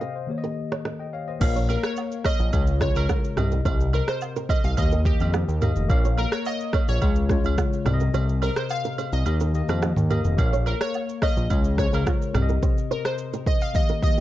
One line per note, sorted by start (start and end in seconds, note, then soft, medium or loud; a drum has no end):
0.00 0.25 C3 medium
0.00 0.26 C4 medium
0.00 0.27 G4 medium
0.00 0.11 G4 medium
0.00 0.11 A#4 medium
0.00 0.14 C5 medium
0.00 0.31 D#5 medium
0.00 0.31 F5 medium
0.00 0.31 G5 medium
0.16 0.42 C5 medium
0.26 1.38 D#3 medium
0.26 1.38 A#3 medium
0.26 1.39 G4 medium
0.31 0.37 C#5 medium
0.38 0.88 D#5 medium
0.44 0.53 G4 medium
0.44 0.52 A#4 medium
0.72 0.81 A#4 medium
0.72 0.81 C#5 medium
0.72 cross-stick medium
0.85 1.04 A#4 medium
0.85 1.04 D#5 medium
0.85 cross-stick medium
1.00 1.13 D#5 medium
1.00 1.12 G5 medium
1.13 1.27 C#5 medium
1.13 1.27 F5 medium
1.28 1.55 C5 medium
1.28 1.54 D#5 medium
1.40 1.77 A#1 loud
1.40 2.32 A#3 medium
1.40 2.32 A#4 medium
1.40 2.32 C#5 medium
1.40 2.33 F5 loud
1.40 kick loud
1.40 crash loud
1.40 high agogo medium
1.40 shaker medium
1.56 1.65 A#4 medium
1.56 1.65 C#5 medium
1.56 shaker medium
1.69 1.79 G4 medium
1.69 1.79 A#4 medium
1.69 1.84 A#4 medium
1.69 high agogo medium
1.69 shaker medium
1.83 2.23 C#5 medium
1.83 cross-stick loud
1.83 shaker medium
1.96 low woodblock medium
1.96 shaker medium
2.12 shaker medium
2.25 2.35 A#4 medium
2.25 2.35 C#5 medium
2.25 2.77 D#5 loud
2.25 kick loud
2.25 cross-stick loud
2.25 high agogo medium
2.39 2.51 A#1 medium
2.39 shaker medium
2.52 2.89 C#2 loud
2.52 2.75 C#3 medium
2.52 2.76 G#3 medium
2.52 2.76 F4 medium
2.52 2.77 C#5 medium
2.52 kick loud
2.52 high agogo medium
2.52 shaker medium
2.67 shaker medium
2.80 3.26 C#3 medium
2.80 3.27 G#3 medium
2.80 3.27 F4 medium
2.80 2.91 G4 medium
2.80 2.91 A#4 medium
2.80 2.96 C#5 loud
2.80 3.28 C#5 medium
2.80 kick loud
2.80 cross-stick loud
2.80 shaker medium
2.96 3.07 C#2 medium
2.96 3.35 A#4 medium
2.96 high agogo medium
2.96 shaker soft
3.09 3.20 F4 medium
3.09 3.19 G#4 medium
3.09 kick medium
3.09 cross-stick medium
3.09 low woodblock medium
3.09 shaker medium
3.24 shaker medium
3.36 3.61 C2 loud
3.36 4.28 C3 medium
3.36 4.28 C4 medium
3.36 3.48 D#4 medium
3.36 3.47 G4 medium
3.36 4.29 G4 medium
3.36 4.29 D#5 medium
3.36 cross-stick medium
3.36 mid tom medium
3.36 high agogo medium
3.36 shaker medium
3.52 3.61 G4 medium
3.52 3.61 A#4 medium
3.52 shaker soft
3.65 4.02 C2 loud
3.65 3.76 G4 medium
3.65 3.75 C5 loud
3.65 kick loud
3.65 high agogo medium
3.65 shaker medium
3.80 shaker medium
3.93 4.04 G#4 medium
3.93 4.09 A#4 medium
3.93 4.03 C5 medium
3.93 high agogo medium
3.93 shaker medium
4.08 4.51 C5 medium
4.08 cross-stick loud
4.08 shaker medium
4.21 low woodblock medium
4.21 shaker medium
4.36 4.46 G4 medium
4.36 4.45 A#4 medium
4.36 shaker medium
4.49 4.60 G#4 medium
4.49 4.59 C5 medium
4.49 4.56 D#5 loud
4.49 kick loud
4.49 high agogo medium
4.64 4.75 C2 medium
4.64 4.78 F5 loud
4.64 shaker medium
4.76 5.14 D#2 loud
4.76 5.00 D#3 medium
4.76 5.00 A#3 medium
4.76 5.01 G4 medium
4.76 4.91 D#5 loud
4.76 5.01 D#5 medium
4.76 kick loud
4.76 high agogo medium
4.76 shaker medium
4.91 5.02 G4 medium
4.91 5.01 A#4 medium
4.91 shaker medium
5.04 5.51 D#3 medium
5.04 5.51 A#3 medium
5.04 5.58 G4 medium
5.04 5.52 G4 medium
5.04 5.52 D#5 medium
5.04 kick loud
5.04 shaker medium
5.20 5.44 F2 loud
5.20 5.30 D#4 medium
5.20 5.29 G4 medium
5.20 high agogo medium
5.20 shaker medium
5.33 5.44 D#4 medium
5.33 5.43 G4 medium
5.33 cross-stick loud
5.33 low woodblock medium
5.33 shaker medium
5.48 5.72 D#2 medium
5.48 shaker medium
5.60 5.84 D#3 medium
5.60 5.84 A#3 medium
5.60 5.85 G4 medium
5.60 5.72 G4 medium
5.60 5.72 A#4 medium
5.60 5.85 D#5 medium
5.60 mid tom medium
5.60 high agogo medium
5.60 shaker medium
5.76 5.88 F1 medium
5.76 shaker medium
5.88 6.26 A#1 loud
5.88 6.80 A#3 medium
5.88 6.81 A#4 medium
5.88 6.81 C#5 medium
5.88 6.81 F5 loud
5.88 kick loud
5.88 high agogo medium
5.88 shaker medium
6.05 6.14 A#4 medium
6.05 6.14 C#5 medium
6.05 shaker medium
6.17 6.28 G4 medium
6.17 6.32 A#4 loud
6.17 6.28 A#4 medium
6.17 high agogo medium
6.17 shaker medium
6.32 6.46 C#5 medium
6.32 cross-stick loud
6.32 shaker medium
6.45 6.86 D#5 loud
6.45 low woodblock medium
6.45 shaker medium
6.60 shaker medium
6.73 6.84 A#4 medium
6.73 6.84 C#5 medium
6.73 kick loud
6.73 cross-stick loud
6.73 high agogo medium
6.88 7.00 A#1 medium
6.88 7.82 C#5 medium
6.88 shaker medium
7.01 7.38 C#2 loud
7.01 7.24 C#3 medium
7.01 7.24 G#3 medium
7.01 7.25 F4 medium
7.01 7.25 C#5 medium
7.01 kick loud
7.01 high agogo medium
7.01 shaker medium
7.16 shaker medium
7.29 7.75 C#3 medium
7.29 7.75 G#3 medium
7.29 7.76 F4 medium
7.29 7.40 G4 medium
7.29 7.40 A#4 medium
7.29 7.76 C#5 medium
7.29 kick loud
7.29 cross-stick medium
7.29 shaker medium
7.44 7.56 C#2 medium
7.44 high agogo medium
7.44 shaker soft
7.58 7.68 F4 medium
7.58 7.68 G#4 medium
7.58 kick medium
7.58 cross-stick medium
7.58 low woodblock medium
7.58 shaker medium
7.73 shaker medium
7.85 8.10 C2 loud
7.85 8.76 C3 loud
7.85 8.77 C4 medium
7.85 7.96 D#4 medium
7.85 8.77 G4 medium
7.85 7.96 G4 medium
7.85 7.93 D5 medium
7.85 cross-stick medium
7.85 mid tom medium
7.85 high agogo medium
7.85 shaker medium
7.94 8.81 D#5 loud
8.00 8.10 G4 medium
8.00 8.10 A#4 medium
8.00 shaker medium
8.14 8.50 C2 loud
8.14 8.24 G4 medium
8.14 8.24 C5 loud
8.14 high agogo medium
8.14 shaker medium
8.29 shaker medium
8.42 8.52 G#4 medium
8.42 8.57 A#4 loud
8.42 8.52 C5 medium
8.42 open hi-hat medium
8.42 high agogo medium
8.42 shaker medium
8.56 8.63 C5 medium
8.56 cross-stick loud
8.56 shaker medium
8.69 9.14 F5 loud
8.69 low woodblock medium
8.69 shaker medium
8.85 8.94 G4 medium
8.85 8.94 A#4 medium
8.85 shaker medium
8.98 9.08 G#4 medium
8.98 9.08 C5 medium
8.98 high agogo medium
8.98 shaker medium
9.12 9.24 C2 medium
9.12 10.06 D#5 medium
9.12 shaker medium
9.25 9.62 D#2 loud
9.25 9.48 D#3 medium
9.25 9.49 A#3 medium
9.25 9.49 G4 medium
9.25 9.50 D#5 medium
9.25 high agogo medium
9.25 shaker medium
9.40 9.50 G4 medium
9.40 9.50 A#4 medium
9.40 shaker medium
9.53 9.99 D#3 medium
9.53 10.00 A#3 medium
9.53 10.00 G4 medium
9.53 10.01 D#5 medium
9.53 shaker medium
9.69 9.92 F2 loud
9.69 9.78 D#4 medium
9.69 9.78 G4 medium
9.69 cross-stick medium
9.69 high agogo medium
9.69 shaker soft
9.82 9.93 D#4 medium
9.82 9.92 G4 medium
9.82 cross-stick loud
9.82 low woodblock medium
9.82 shaker medium
9.96 10.21 D#2 medium
9.96 mid tom loud
9.96 shaker medium
10.09 10.32 D#3 medium
10.09 10.33 A#3 medium
10.09 10.33 G4 medium
10.09 10.21 G4 medium
10.09 10.20 A#4 medium
10.09 10.34 D#5 loud
10.09 mid tom medium
10.09 high agogo medium
10.09 shaker medium
10.24 10.36 F1 medium
10.24 shaker medium
10.37 10.74 A#1 loud
10.37 11.29 A#3 loud
10.37 11.29 A#4 medium
10.37 11.30 C#5 medium
10.37 11.30 F5 loud
10.37 kick loud
10.37 high agogo loud
10.37 shaker medium
10.53 10.62 A#4 medium
10.53 10.62 C#5 medium
10.53 shaker medium
10.66 10.77 G4 medium
10.66 10.76 A#4 medium
10.66 10.73 A#4 medium
10.66 high agogo medium
10.66 shaker medium
10.81 11.24 C#5 loud
10.81 cross-stick loud
10.81 shaker medium
10.94 low woodblock medium
10.94 shaker medium
11.09 shaker medium
11.22 11.33 A#4 medium
11.22 11.32 C#5 medium
11.22 11.80 D#5 loud
11.22 kick loud
11.22 cross-stick loud
11.22 high agogo medium
11.37 11.48 A#1 medium
11.37 shaker medium
11.49 11.87 C#2 loud
11.49 11.73 C#3 medium
11.49 11.73 G#3 medium
11.49 11.73 F4 medium
11.49 11.74 C#5 medium
11.49 kick loud
11.49 high agogo medium
11.49 shaker medium
11.64 shaker medium
11.77 12.24 C#3 medium
11.77 12.24 G#3 medium
11.77 12.24 F4 medium
11.77 11.89 G4 medium
11.77 11.88 A#4 medium
11.77 11.86 C5 medium
11.77 11.94 C#5 loud
11.77 kick loud
11.77 cross-stick loud
11.77 shaker medium
11.86 12.28 C#5 medium
11.93 12.04 C#2 medium
11.93 12.32 A#4 medium
11.93 high agogo medium
11.93 shaker soft
12.07 12.17 F4 medium
12.07 12.16 G#4 medium
12.07 kick medium
12.07 cross-stick medium
12.07 low woodblock medium
12.07 shaker medium
12.22 shaker medium
12.33 12.58 C2 loud
12.33 13.25 C3 medium
12.33 13.25 C4 medium
12.33 12.45 D#4 medium
12.33 12.44 G4 medium
12.33 13.26 G4 medium
12.33 12.42 D5 medium
12.33 cross-stick loud
12.33 mid tom medium
12.33 high agogo medium
12.33 shaker medium
12.42 13.29 D#5 loud
12.49 12.59 G4 medium
12.49 12.58 A#4 medium
12.49 shaker medium
12.63 12.73 G4 medium
12.63 12.72 C5 loud
12.63 kick loud
12.63 shaker medium
12.78 shaker medium
12.91 13.01 G#4 medium
12.91 13.05 A#4 medium
12.91 13.00 C5 medium
12.91 shaker medium
13.05 13.48 C5 medium
13.05 cross-stick loud
13.05 shaker medium
13.18 shaker medium
13.33 13.43 G4 medium
13.33 13.42 A#4 medium
13.33 shaker medium
13.46 13.57 G#4 medium
13.46 13.56 C5 medium
13.46 13.62 D#5 loud
13.46 kick loud
13.61 13.68 F5 loud
13.61 shaker medium
13.73 13.97 D#3 medium
13.73 13.97 A#3 medium
13.73 13.98 G4 medium
13.73 14.02 D#5 loud
13.73 13.98 D#5 medium
13.73 kick loud
13.73 shaker medium
13.89 13.99 G4 medium
13.89 13.98 A#4 medium
13.89 shaker medium
14.02 14.20 D#3 medium
14.02 14.20 A#3 medium
14.02 14.20 G4 medium
14.02 14.20 D#5 loud
14.02 14.20 D#5 medium
14.02 kick loud
14.02 shaker medium
14.17 shaker soft